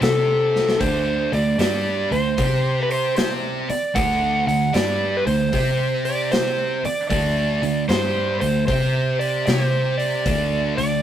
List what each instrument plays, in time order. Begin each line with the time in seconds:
0.01 picked electric bass C3, distorted electric guitar C4 G4 C5, electric slide guitar A4, snare, open hi-hat
0.56 snare
0.69 snare
0.80 picked electric bass D2, distorted electric guitar D3 A3 D4, electric slide guitar C5, kick, open hi-hat
1.32 picked electric bass D2, distorted electric guitar D3 A3, electric slide guitar D5, open hi-hat
1.58 picked electric bass G2, distorted electric guitar G3 D4 G4, electric slide guitar D5, snare, open hi-hat
2.11 picked electric bass D2, distorted electric guitar D3 A3, electric slide guitar C5, open hi-hat
2.37 picked electric bass C3, distorted electric guitar C4 G4 C5, kick, open hi-hat
2.83 electric slide guitar B4
2.91 electric slide guitar C5, open hi-hat
3.16 electric slide guitar C5, snare, open hi-hat
3.68 electric slide guitar D5, muted distorted electric guitar stroke, muted picked electric bass stroke, open hi-hat
3.94 picked electric bass D2, distorted electric guitar D3 A3 D4, electric slide guitar F#5, kick, open hi-hat
4.47 picked electric bass D2, distorted electric guitar D3 A3, electric slide guitar F#5, open hi-hat
4.73 picked electric bass G2, distorted electric guitar G3 D4 G4, electric slide guitar D5, snare, open hi-hat
5.17 electric slide guitar B4
5.26 picked electric bass D2, distorted electric guitar D3 A3, electric slide guitar C5, open hi-hat
5.52 picked electric bass C3, distorted electric guitar C4 G4 C5, kick, open hi-hat
6.05 electric slide guitar D5, open hi-hat
6.32 electric slide guitar C5, snare, open hi-hat
6.84 electric slide guitar D5, muted picked electric bass stroke, muted distorted electric guitar stroke, open hi-hat
7.09 picked electric bass D2, distorted electric guitar D3 A3 D4, electric slide guitar D5, kick, open hi-hat
7.62 picked electric bass D2, distorted electric guitar D3 A3, open hi-hat
7.88 picked electric bass G2, distorted electric guitar G3 D4 G4, electric slide guitar C5, snare, open hi-hat
8.40 picked electric bass D2, distorted electric guitar D3 A3, electric slide guitar C5, open hi-hat
8.67 picked electric bass C3, distorted electric guitar C4 G4 C5, electric slide guitar C5, kick, open hi-hat
9.19 electric slide guitar D5, open hi-hat
9.46 picked electric bass C3, distorted electric guitar C4 G4 C5, electric slide guitar C#5, snare, open hi-hat
9.65 electric slide guitar C5
9.98 electric slide guitar D5, open hi-hat
10.26 picked electric bass D2, distorted electric guitar D3 A3 D4, kick, open hi-hat
10.77 picked electric bass D2, distorted electric guitar D3 A3, electric slide guitar D5, open hi-hat